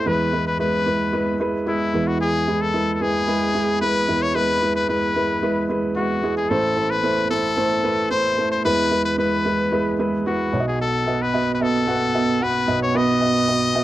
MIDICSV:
0, 0, Header, 1, 3, 480
1, 0, Start_track
1, 0, Key_signature, 4, "major"
1, 0, Tempo, 537153
1, 56, Time_signature, 4, 2, 24, 8
1, 12366, End_track
2, 0, Start_track
2, 0, Title_t, "Trumpet"
2, 0, Program_c, 0, 56
2, 62, Note_on_c, 0, 71, 91
2, 416, Note_off_c, 0, 71, 0
2, 421, Note_on_c, 0, 71, 81
2, 530, Note_off_c, 0, 71, 0
2, 541, Note_on_c, 0, 71, 78
2, 1220, Note_off_c, 0, 71, 0
2, 1501, Note_on_c, 0, 64, 76
2, 1855, Note_on_c, 0, 66, 71
2, 1869, Note_off_c, 0, 64, 0
2, 1972, Note_off_c, 0, 66, 0
2, 1977, Note_on_c, 0, 68, 94
2, 2337, Note_on_c, 0, 69, 91
2, 2350, Note_off_c, 0, 68, 0
2, 2627, Note_off_c, 0, 69, 0
2, 2627, Note_on_c, 0, 69, 63
2, 2696, Note_on_c, 0, 68, 91
2, 2709, Note_off_c, 0, 69, 0
2, 3404, Note_off_c, 0, 68, 0
2, 3409, Note_on_c, 0, 71, 93
2, 3774, Note_on_c, 0, 73, 84
2, 3787, Note_off_c, 0, 71, 0
2, 3889, Note_on_c, 0, 71, 98
2, 3903, Note_off_c, 0, 73, 0
2, 4247, Note_off_c, 0, 71, 0
2, 4252, Note_on_c, 0, 71, 80
2, 4365, Note_off_c, 0, 71, 0
2, 4373, Note_on_c, 0, 71, 81
2, 5056, Note_off_c, 0, 71, 0
2, 5328, Note_on_c, 0, 66, 72
2, 5666, Note_off_c, 0, 66, 0
2, 5693, Note_on_c, 0, 68, 74
2, 5804, Note_on_c, 0, 69, 92
2, 5817, Note_off_c, 0, 68, 0
2, 6168, Note_on_c, 0, 71, 83
2, 6182, Note_off_c, 0, 69, 0
2, 6522, Note_off_c, 0, 71, 0
2, 6527, Note_on_c, 0, 69, 91
2, 7215, Note_off_c, 0, 69, 0
2, 7245, Note_on_c, 0, 72, 94
2, 7584, Note_off_c, 0, 72, 0
2, 7609, Note_on_c, 0, 72, 79
2, 7723, Note_off_c, 0, 72, 0
2, 7733, Note_on_c, 0, 71, 105
2, 8068, Note_off_c, 0, 71, 0
2, 8089, Note_on_c, 0, 71, 86
2, 8203, Note_off_c, 0, 71, 0
2, 8211, Note_on_c, 0, 71, 83
2, 8894, Note_off_c, 0, 71, 0
2, 9179, Note_on_c, 0, 66, 71
2, 9511, Note_off_c, 0, 66, 0
2, 9542, Note_on_c, 0, 68, 65
2, 9649, Note_off_c, 0, 68, 0
2, 9663, Note_on_c, 0, 69, 90
2, 10024, Note_on_c, 0, 71, 85
2, 10037, Note_off_c, 0, 69, 0
2, 10311, Note_off_c, 0, 71, 0
2, 10316, Note_on_c, 0, 71, 62
2, 10388, Note_on_c, 0, 69, 93
2, 10401, Note_off_c, 0, 71, 0
2, 11106, Note_on_c, 0, 71, 86
2, 11120, Note_off_c, 0, 69, 0
2, 11456, Note_off_c, 0, 71, 0
2, 11461, Note_on_c, 0, 73, 86
2, 11587, Note_on_c, 0, 75, 115
2, 11600, Note_off_c, 0, 73, 0
2, 12366, Note_off_c, 0, 75, 0
2, 12366, End_track
3, 0, Start_track
3, 0, Title_t, "Felt piano"
3, 0, Program_c, 1, 0
3, 0, Control_c, 1, 64, 127
3, 49, Note_on_c, 1, 56, 78
3, 52, Note_on_c, 1, 52, 57
3, 53, Note_on_c, 1, 40, 57
3, 54, Note_on_c, 1, 64, 73
3, 56, Note_on_c, 1, 71, 95
3, 67, Control_c, 1, 64, 0
3, 201, Control_c, 1, 64, 127
3, 234, Note_off_c, 1, 56, 0
3, 236, Note_off_c, 1, 64, 0
3, 238, Note_off_c, 1, 71, 0
3, 293, Note_on_c, 1, 56, 64
3, 295, Note_on_c, 1, 64, 55
3, 300, Note_on_c, 1, 71, 64
3, 476, Note_off_c, 1, 56, 0
3, 477, Note_off_c, 1, 64, 0
3, 479, Note_off_c, 1, 71, 0
3, 531, Note_on_c, 1, 56, 63
3, 534, Note_on_c, 1, 64, 57
3, 538, Note_on_c, 1, 71, 70
3, 714, Note_off_c, 1, 56, 0
3, 716, Note_off_c, 1, 64, 0
3, 718, Note_off_c, 1, 71, 0
3, 769, Note_on_c, 1, 56, 67
3, 773, Note_on_c, 1, 64, 62
3, 776, Note_on_c, 1, 71, 69
3, 953, Note_off_c, 1, 56, 0
3, 956, Note_off_c, 1, 64, 0
3, 957, Note_off_c, 1, 71, 0
3, 1007, Note_on_c, 1, 56, 78
3, 1010, Note_on_c, 1, 64, 69
3, 1014, Note_on_c, 1, 71, 85
3, 1193, Note_off_c, 1, 56, 0
3, 1194, Note_off_c, 1, 64, 0
3, 1196, Note_off_c, 1, 71, 0
3, 1251, Note_on_c, 1, 56, 79
3, 1255, Note_on_c, 1, 64, 71
3, 1256, Note_on_c, 1, 71, 91
3, 1434, Note_off_c, 1, 56, 0
3, 1436, Note_off_c, 1, 64, 0
3, 1437, Note_off_c, 1, 71, 0
3, 1489, Note_on_c, 1, 56, 61
3, 1492, Note_on_c, 1, 64, 55
3, 1496, Note_on_c, 1, 68, 71
3, 1673, Note_off_c, 1, 56, 0
3, 1675, Note_off_c, 1, 64, 0
3, 1677, Note_off_c, 1, 68, 0
3, 1698, Note_off_c, 1, 40, 0
3, 1698, Note_off_c, 1, 52, 0
3, 1729, Note_on_c, 1, 56, 70
3, 1734, Note_on_c, 1, 40, 57
3, 1734, Note_on_c, 1, 52, 55
3, 1736, Note_on_c, 1, 64, 64
3, 1737, Note_on_c, 1, 71, 73
3, 1745, Control_c, 1, 64, 0
3, 1885, Control_c, 1, 64, 127
3, 2116, Note_off_c, 1, 56, 0
3, 2119, Note_off_c, 1, 64, 0
3, 2120, Note_off_c, 1, 71, 0
3, 2213, Note_on_c, 1, 56, 60
3, 2215, Note_on_c, 1, 64, 60
3, 2219, Note_on_c, 1, 68, 72
3, 2395, Note_off_c, 1, 56, 0
3, 2396, Note_off_c, 1, 64, 0
3, 2398, Note_off_c, 1, 68, 0
3, 2447, Note_on_c, 1, 56, 67
3, 2451, Note_on_c, 1, 64, 60
3, 2451, Note_on_c, 1, 71, 69
3, 2632, Note_off_c, 1, 56, 0
3, 2634, Note_off_c, 1, 64, 0
3, 2634, Note_off_c, 1, 71, 0
3, 2686, Note_on_c, 1, 56, 64
3, 2689, Note_on_c, 1, 64, 62
3, 2695, Note_on_c, 1, 71, 77
3, 2871, Note_off_c, 1, 56, 0
3, 2873, Note_off_c, 1, 64, 0
3, 2876, Note_off_c, 1, 71, 0
3, 2927, Note_on_c, 1, 56, 81
3, 2930, Note_on_c, 1, 64, 68
3, 2933, Note_on_c, 1, 71, 88
3, 3112, Note_off_c, 1, 56, 0
3, 3114, Note_off_c, 1, 64, 0
3, 3115, Note_off_c, 1, 71, 0
3, 3169, Note_on_c, 1, 56, 67
3, 3173, Note_on_c, 1, 64, 58
3, 3176, Note_on_c, 1, 68, 75
3, 3353, Note_off_c, 1, 56, 0
3, 3355, Note_off_c, 1, 64, 0
3, 3357, Note_off_c, 1, 68, 0
3, 3407, Note_on_c, 1, 56, 65
3, 3411, Note_on_c, 1, 64, 56
3, 3414, Note_on_c, 1, 71, 70
3, 3592, Note_off_c, 1, 56, 0
3, 3594, Note_off_c, 1, 64, 0
3, 3595, Note_off_c, 1, 71, 0
3, 3618, Note_off_c, 1, 40, 0
3, 3618, Note_off_c, 1, 52, 0
3, 3647, Note_on_c, 1, 56, 64
3, 3649, Note_on_c, 1, 64, 59
3, 3650, Note_on_c, 1, 52, 56
3, 3652, Note_on_c, 1, 40, 56
3, 3654, Note_on_c, 1, 71, 70
3, 3832, Note_off_c, 1, 56, 0
3, 3833, Note_off_c, 1, 64, 0
3, 3836, Note_off_c, 1, 71, 0
3, 3887, Note_on_c, 1, 56, 85
3, 3890, Note_on_c, 1, 64, 76
3, 3894, Note_on_c, 1, 71, 92
3, 4072, Note_off_c, 1, 56, 0
3, 4074, Note_off_c, 1, 64, 0
3, 4075, Note_off_c, 1, 71, 0
3, 4127, Note_on_c, 1, 56, 65
3, 4130, Note_on_c, 1, 64, 60
3, 4135, Note_on_c, 1, 71, 71
3, 4312, Note_off_c, 1, 56, 0
3, 4313, Note_off_c, 1, 64, 0
3, 4316, Note_off_c, 1, 71, 0
3, 4367, Note_on_c, 1, 56, 65
3, 4373, Note_on_c, 1, 64, 58
3, 4374, Note_on_c, 1, 71, 67
3, 4552, Note_off_c, 1, 56, 0
3, 4555, Note_off_c, 1, 64, 0
3, 4555, Note_off_c, 1, 71, 0
3, 4606, Note_on_c, 1, 56, 60
3, 4608, Note_on_c, 1, 64, 58
3, 4614, Note_on_c, 1, 71, 69
3, 4791, Note_off_c, 1, 56, 0
3, 4793, Note_off_c, 1, 64, 0
3, 4795, Note_off_c, 1, 71, 0
3, 4848, Note_on_c, 1, 56, 74
3, 4850, Note_on_c, 1, 64, 73
3, 4855, Note_on_c, 1, 71, 83
3, 5032, Note_off_c, 1, 56, 0
3, 5033, Note_off_c, 1, 64, 0
3, 5036, Note_off_c, 1, 71, 0
3, 5087, Note_on_c, 1, 56, 77
3, 5091, Note_on_c, 1, 64, 70
3, 5094, Note_on_c, 1, 71, 83
3, 5272, Note_off_c, 1, 56, 0
3, 5274, Note_off_c, 1, 64, 0
3, 5275, Note_off_c, 1, 71, 0
3, 5328, Note_on_c, 1, 56, 60
3, 5332, Note_on_c, 1, 64, 57
3, 5335, Note_on_c, 1, 71, 64
3, 5512, Note_off_c, 1, 56, 0
3, 5514, Note_off_c, 1, 64, 0
3, 5516, Note_off_c, 1, 71, 0
3, 5536, Note_off_c, 1, 52, 0
3, 5537, Note_off_c, 1, 40, 0
3, 5568, Note_on_c, 1, 56, 63
3, 5570, Note_on_c, 1, 64, 58
3, 5574, Note_on_c, 1, 68, 69
3, 5752, Note_off_c, 1, 56, 0
3, 5753, Note_off_c, 1, 64, 0
3, 5755, Note_off_c, 1, 68, 0
3, 5808, Note_on_c, 1, 57, 82
3, 5812, Note_on_c, 1, 33, 58
3, 5813, Note_on_c, 1, 45, 55
3, 5813, Note_on_c, 1, 64, 78
3, 5817, Note_on_c, 1, 72, 99
3, 5825, Control_c, 1, 64, 0
3, 5962, Control_c, 1, 64, 127
3, 5992, Note_off_c, 1, 57, 0
3, 5995, Note_off_c, 1, 64, 0
3, 5997, Note_off_c, 1, 72, 0
3, 6043, Note_on_c, 1, 57, 61
3, 6047, Note_on_c, 1, 64, 61
3, 6050, Note_on_c, 1, 72, 71
3, 6230, Note_off_c, 1, 57, 0
3, 6232, Note_off_c, 1, 64, 0
3, 6233, Note_off_c, 1, 72, 0
3, 6286, Note_on_c, 1, 57, 66
3, 6289, Note_on_c, 1, 64, 59
3, 6289, Note_on_c, 1, 72, 71
3, 6471, Note_off_c, 1, 57, 0
3, 6473, Note_off_c, 1, 64, 0
3, 6473, Note_off_c, 1, 72, 0
3, 6524, Note_on_c, 1, 57, 68
3, 6526, Note_on_c, 1, 64, 61
3, 6530, Note_on_c, 1, 72, 73
3, 6710, Note_off_c, 1, 57, 0
3, 6711, Note_off_c, 1, 64, 0
3, 6713, Note_off_c, 1, 72, 0
3, 6765, Note_on_c, 1, 57, 78
3, 6768, Note_on_c, 1, 64, 68
3, 6771, Note_on_c, 1, 72, 86
3, 6951, Note_off_c, 1, 57, 0
3, 6952, Note_off_c, 1, 64, 0
3, 6954, Note_off_c, 1, 72, 0
3, 7001, Note_on_c, 1, 57, 63
3, 7004, Note_on_c, 1, 64, 59
3, 7007, Note_on_c, 1, 71, 74
3, 7189, Note_off_c, 1, 57, 0
3, 7190, Note_off_c, 1, 64, 0
3, 7192, Note_off_c, 1, 71, 0
3, 7246, Note_on_c, 1, 57, 66
3, 7250, Note_on_c, 1, 64, 59
3, 7254, Note_on_c, 1, 72, 68
3, 7431, Note_off_c, 1, 57, 0
3, 7433, Note_off_c, 1, 64, 0
3, 7435, Note_off_c, 1, 72, 0
3, 7485, Note_on_c, 1, 57, 66
3, 7488, Note_on_c, 1, 64, 58
3, 7490, Note_on_c, 1, 72, 69
3, 7671, Note_off_c, 1, 57, 0
3, 7672, Note_off_c, 1, 64, 0
3, 7673, Note_off_c, 1, 72, 0
3, 7696, Note_off_c, 1, 33, 0
3, 7697, Note_off_c, 1, 45, 0
3, 7728, Note_on_c, 1, 56, 85
3, 7729, Note_on_c, 1, 52, 61
3, 7731, Note_on_c, 1, 64, 80
3, 7732, Note_on_c, 1, 40, 60
3, 7734, Note_on_c, 1, 71, 98
3, 7745, Control_c, 1, 64, 0
3, 7878, Control_c, 1, 64, 127
3, 7912, Note_off_c, 1, 56, 0
3, 7914, Note_off_c, 1, 64, 0
3, 7915, Note_off_c, 1, 71, 0
3, 7961, Note_on_c, 1, 56, 61
3, 7966, Note_on_c, 1, 64, 57
3, 7968, Note_on_c, 1, 71, 70
3, 8148, Note_off_c, 1, 56, 0
3, 8151, Note_off_c, 1, 64, 0
3, 8152, Note_off_c, 1, 71, 0
3, 8203, Note_on_c, 1, 56, 68
3, 8205, Note_on_c, 1, 64, 61
3, 8209, Note_on_c, 1, 71, 77
3, 8390, Note_off_c, 1, 56, 0
3, 8390, Note_off_c, 1, 64, 0
3, 8392, Note_off_c, 1, 71, 0
3, 8445, Note_on_c, 1, 56, 68
3, 8447, Note_on_c, 1, 64, 61
3, 8451, Note_on_c, 1, 71, 71
3, 8630, Note_off_c, 1, 56, 0
3, 8632, Note_off_c, 1, 64, 0
3, 8633, Note_off_c, 1, 71, 0
3, 8686, Note_on_c, 1, 56, 81
3, 8687, Note_on_c, 1, 64, 70
3, 8692, Note_on_c, 1, 71, 88
3, 8871, Note_off_c, 1, 56, 0
3, 8871, Note_off_c, 1, 64, 0
3, 8874, Note_off_c, 1, 71, 0
3, 8928, Note_on_c, 1, 56, 80
3, 8932, Note_on_c, 1, 64, 72
3, 8934, Note_on_c, 1, 71, 89
3, 9112, Note_off_c, 1, 56, 0
3, 9114, Note_off_c, 1, 64, 0
3, 9115, Note_off_c, 1, 71, 0
3, 9168, Note_on_c, 1, 56, 65
3, 9173, Note_on_c, 1, 64, 58
3, 9177, Note_on_c, 1, 71, 67
3, 9352, Note_off_c, 1, 56, 0
3, 9354, Note_off_c, 1, 64, 0
3, 9356, Note_off_c, 1, 71, 0
3, 9375, Note_off_c, 1, 52, 0
3, 9376, Note_off_c, 1, 40, 0
3, 9407, Note_on_c, 1, 59, 67
3, 9410, Note_on_c, 1, 35, 54
3, 9412, Note_on_c, 1, 47, 59
3, 9412, Note_on_c, 1, 66, 63
3, 9414, Note_on_c, 1, 73, 62
3, 9423, Control_c, 1, 64, 0
3, 9471, Note_off_c, 1, 73, 0
3, 9472, Note_on_c, 1, 75, 77
3, 9588, Control_c, 1, 64, 127
3, 9794, Note_off_c, 1, 59, 0
3, 9796, Note_off_c, 1, 66, 0
3, 9826, Note_off_c, 1, 75, 0
3, 9889, Note_on_c, 1, 59, 67
3, 9894, Note_on_c, 1, 66, 56
3, 9896, Note_on_c, 1, 75, 72
3, 10072, Note_off_c, 1, 59, 0
3, 10074, Note_off_c, 1, 66, 0
3, 10075, Note_off_c, 1, 75, 0
3, 10131, Note_on_c, 1, 59, 68
3, 10134, Note_on_c, 1, 66, 61
3, 10136, Note_on_c, 1, 75, 74
3, 10313, Note_off_c, 1, 59, 0
3, 10314, Note_off_c, 1, 66, 0
3, 10315, Note_off_c, 1, 75, 0
3, 10371, Note_on_c, 1, 59, 69
3, 10375, Note_on_c, 1, 66, 65
3, 10378, Note_on_c, 1, 75, 74
3, 10553, Note_off_c, 1, 59, 0
3, 10555, Note_off_c, 1, 66, 0
3, 10556, Note_off_c, 1, 75, 0
3, 10609, Note_on_c, 1, 59, 79
3, 10612, Note_on_c, 1, 66, 74
3, 10616, Note_on_c, 1, 78, 95
3, 10792, Note_off_c, 1, 59, 0
3, 10793, Note_off_c, 1, 66, 0
3, 10795, Note_off_c, 1, 78, 0
3, 10850, Note_on_c, 1, 59, 69
3, 10852, Note_on_c, 1, 66, 62
3, 10856, Note_on_c, 1, 75, 76
3, 11032, Note_off_c, 1, 59, 0
3, 11033, Note_off_c, 1, 66, 0
3, 11035, Note_off_c, 1, 75, 0
3, 11088, Note_on_c, 1, 59, 64
3, 11091, Note_on_c, 1, 66, 59
3, 11094, Note_on_c, 1, 78, 72
3, 11271, Note_off_c, 1, 59, 0
3, 11273, Note_off_c, 1, 66, 0
3, 11274, Note_off_c, 1, 78, 0
3, 11295, Note_off_c, 1, 35, 0
3, 11296, Note_off_c, 1, 47, 0
3, 11323, Note_on_c, 1, 59, 69
3, 11327, Note_on_c, 1, 47, 55
3, 11328, Note_on_c, 1, 66, 59
3, 11329, Note_on_c, 1, 35, 60
3, 11331, Note_on_c, 1, 75, 78
3, 11509, Note_off_c, 1, 59, 0
3, 11511, Note_off_c, 1, 66, 0
3, 11513, Note_off_c, 1, 75, 0
3, 11567, Note_on_c, 1, 59, 96
3, 11569, Note_on_c, 1, 66, 82
3, 11572, Note_on_c, 1, 71, 104
3, 11750, Note_off_c, 1, 59, 0
3, 11752, Note_off_c, 1, 66, 0
3, 11753, Note_off_c, 1, 71, 0
3, 11806, Note_on_c, 1, 59, 64
3, 11809, Note_on_c, 1, 66, 60
3, 11813, Note_on_c, 1, 75, 71
3, 11990, Note_off_c, 1, 59, 0
3, 11991, Note_off_c, 1, 66, 0
3, 11994, Note_off_c, 1, 75, 0
3, 12046, Note_on_c, 1, 59, 67
3, 12052, Note_on_c, 1, 66, 63
3, 12053, Note_on_c, 1, 75, 71
3, 12230, Note_off_c, 1, 59, 0
3, 12233, Note_off_c, 1, 66, 0
3, 12233, Note_off_c, 1, 75, 0
3, 12287, Note_on_c, 1, 59, 81
3, 12292, Note_on_c, 1, 66, 74
3, 12295, Note_on_c, 1, 75, 90
3, 12366, Note_off_c, 1, 35, 0
3, 12366, Note_off_c, 1, 47, 0
3, 12366, Note_off_c, 1, 59, 0
3, 12366, Note_off_c, 1, 66, 0
3, 12366, Note_off_c, 1, 75, 0
3, 12366, End_track
0, 0, End_of_file